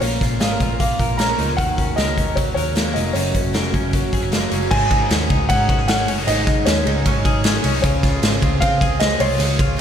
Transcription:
Already playing: clean electric guitar A#3 C#4 A#4
0.01 picked electric bass A#1, twelve-string acoustic guitar A#2 F3 A#3 C#4 F4 A#4, upright piano C#5, closed hi-hat
0.20 picked electric bass A#1, twelve-string acoustic guitar A#3 C#4 F4 A#4, kick, snare, closed hi-hat
0.39 picked electric bass G#1, twelve-string acoustic guitar A#2 F3 A#3 C#4 F4 A#4, clean electric guitar G#4, upright piano F5, snare, closed hi-hat
0.51 clean electric guitar A#4
0.59 picked electric bass A#1, twelve-string acoustic guitar A#3 C#4 F4 A#4, kick, closed hi-hat
0.79 twelve-string acoustic guitar A#3 C#4 F4 A#4, upright piano F5, kick, closed hi-hat
0.99 picked electric bass A#1, twelve-string acoustic guitar A#3 C#4 F4 A#4, kick, closed hi-hat
1.18 twelve-string acoustic guitar A#2 F3 A#3 C#4 F4 A#4, upright piano A#5, snare, closed hi-hat
1.39 picked electric bass C#2, clean electric guitar D#4, closed hi-hat
1.49 clean electric guitar F4
1.57 picked electric bass D#2, twelve-string acoustic guitar D#3 F#3 A#3 C#4 F#4, upright piano F#5, kick, closed hi-hat
1.76 picked electric bass D#2, twelve-string acoustic guitar A#3 C#4 F#4, kick, closed hi-hat
1.96 picked electric bass C#2, twelve-string acoustic guitar D#3 F#3 A#3 C#4 F#4, clean electric guitar A#4, upright piano D#5, snare, closed hi-hat
2.16 picked electric bass D#2, twelve-string acoustic guitar A#3 C#4 F#4, kick, closed hi-hat
2.35 twelve-string acoustic guitar F#3 A#3 C#4, upright piano C#5, kick, closed hi-hat
2.40 twelve-string acoustic guitar F#4
2.54 picked electric bass D#2, twelve-string acoustic guitar C#4 F#4, clean electric guitar A#4, upright piano C#5, closed hi-hat
2.59 twelve-string acoustic guitar A#3
2.75 twelve-string acoustic guitar D#3 F#3 A#3 C#4 F#4, snare, closed hi-hat
2.94 picked electric bass F1, clean electric guitar C#4, upright piano D#5, closed hi-hat
3.13 picked electric bass F#1, twelve-string acoustic guitar F#2 C#3 F#3 A#3 C#4 F#4, upright piano C#5, closed hi-hat
3.33 picked electric bass F#1, twelve-string acoustic guitar F#3 A#3 C#4 F#4, kick, closed hi-hat
3.53 picked electric bass F1, twelve-string acoustic guitar F#2 C#3 F#3 A#3 C#4 F#4, clean electric guitar A#4, snare, closed hi-hat
3.72 picked electric bass F#1, twelve-string acoustic guitar F#3 A#3 C#4 F#4, kick, closed hi-hat
3.91 twelve-string acoustic guitar F#3 A#3 C#4 F#4, kick, closed hi-hat
4.12 picked electric bass F#1, twelve-string acoustic guitar F#3 A#3 C#4 F#4, clean electric guitar G#4, kick, closed hi-hat
4.22 clean electric guitar A#4
4.32 twelve-string acoustic guitar F#2 C#3 F#3 A#3 C#4 F#4, snare, closed hi-hat
4.51 picked electric bass F#1, clean electric guitar C#4, closed hi-hat
4.71 picked electric bass G#1, twelve-string acoustic guitar G#2 C#3 F#3 C#4 D#4 G#4, upright piano G#5, kick, crash
4.91 clean electric guitar D#4, kick, ride
5.09 picked electric bass D#2, twelve-string acoustic guitar F#3 C#4 D#4 G#4, snare, ride
5.29 picked electric bass C#2, twelve-string acoustic guitar F#3 C#4 D#4 G#4, kick, ride
5.49 twelve-string acoustic guitar G#2 C#3 F#3 C#4 D#4 G#4, picked electric bass G#2, upright piano F#5, kick, ride
5.69 picked electric bass G#1, clean electric guitar F#4, kick, ride
5.79 clean electric guitar G#4
5.88 twelve-string acoustic guitar F#3 C#4 D#4 G#4, upright piano F#5, snare, ride
6.08 picked electric bass F#1, clean electric guitar C#4, open hi-hat, ride
6.18 clean electric guitar D#4
6.27 picked electric bass G#1, twelve-string acoustic guitar G#2 C#3 F#3 C#4 D#4 G#4, upright piano D#5, hi-hat pedal, ride
6.47 clean electric guitar D#4, kick, snare, ride
6.65 picked electric bass D#2, twelve-string acoustic guitar F#3 C#4 D#4 G#4, upright piano C#5, snare, ride
6.85 picked electric bass C#2, twelve-string acoustic guitar F#3 C#4 D#4 G#4, ride
7.05 twelve-string acoustic guitar G#2 C#3 F#3 C#4 D#4 G#4, picked electric bass G#2, kick, ride
7.25 picked electric bass G#1, clean electric guitar G#4, kick, ride
7.44 twelve-string acoustic guitar F#3 C#4 D#4 G#4, snare, ride
7.64 picked electric bass C2, clean electric guitar C#4, open hi-hat, ride
7.74 clean electric guitar D#4
7.82 picked electric bass C#2, twelve-string acoustic guitar C#3 G#3 F4 G#4, upright piano C#5, kick, hi-hat pedal, ride
8.03 clean electric guitar F4, kick, snare, ride
8.22 picked electric bass G#1, twelve-string acoustic guitar G#3 C4 F4 G#4, snare, ride
8.41 picked electric bass C#2, twelve-string acoustic guitar C4 F4 G#4, kick, ride
8.60 twelve-string acoustic guitar C#3 G#3 C4 F4 G#4, picked electric bass C#3, upright piano F5, kick, ride
8.81 picked electric bass C#2, clean electric guitar G#4, kick, ride
9.00 twelve-string acoustic guitar G#3 C4 F4 G#4, upright piano D#5, snare, ride
9.20 picked electric bass C2, clean electric guitar F4, upright piano C#5, open hi-hat, ride
9.38 picked electric bass C#2, twelve-string acoustic guitar C#3 G#3 F4 G#4, hi-hat pedal, ride
9.59 clean electric guitar F4, kick, ride
9.77 twelve-string acoustic guitar G#3

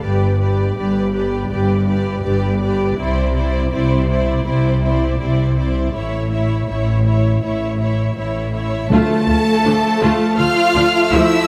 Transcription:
0.01 double bass section G1, cello section G2, viola section G4, violin section B4 D5
0.39 viola section G4, violin section B4 D5
0.76 double bass section G1, cello section G2, viola section G4, violin section B4 D5
1.13 viola section G4, violin section B4 D5
1.50 double bass section G1, cello section G2, viola section G4, violin section B4 D5
1.87 viola section G4, violin section B4 D5
2.24 double bass section G1, cello section G2, viola section G4, violin section B4 D5
2.61 viola section G4, violin section B4 D5
2.98 double bass section C2, cello section C3, viola section E4, violin section C5 D5
3.35 viola section E4, violin section C5 D5
3.71 double bass section C2, cello section C3, viola section E4, violin section C5 D5
4.09 viola section E4, violin section C5 D5
4.46 double bass section C2, cello section C3, viola section E4, violin section C5 D5
4.82 viola section E4, violin section C5 D5
5.19 double bass section C2, cello section C3, viola section E4, violin section C5 D5
5.58 viola section E4, violin section C5 D5
5.94 double bass section A1, cello section A2, viola section E4, violin section C#5 E5
6.31 viola section E4, violin section C#5 E5
6.68 double bass section A1, cello section A2, viola section E4, violin section C#5 E5
7.05 viola section E4, violin section C#5 E5
7.42 double bass section A1, cello section A2, viola section E4, violin section C#5 E5
7.80 viola section E4, violin section C#5 E5
8.16 double bass section A1, cello section A2, viola section E4, violin section C#5 E5
8.53 viola section E4, violin section C#5 E5
8.90 double bass section D2, timpani D3, trombone section F3 A3, cello section A3, french horn section A3, viola section A3 F4, violin section A4 A5
9.28 double bass section D2, viola section A3 F4
9.65 double bass section D2, viola section F3 D4
10.02 double bass section D2, viola section A3 F4
10.37 double bass section D2, viola section A3 F4, cello section F4, french horn section F4, violin section F5 F6
10.75 double bass section D2, viola section F3 D4
11.11 double bass section D2, viola section F3 A3, cello section E4, french horn section E4, violin section E5 E6

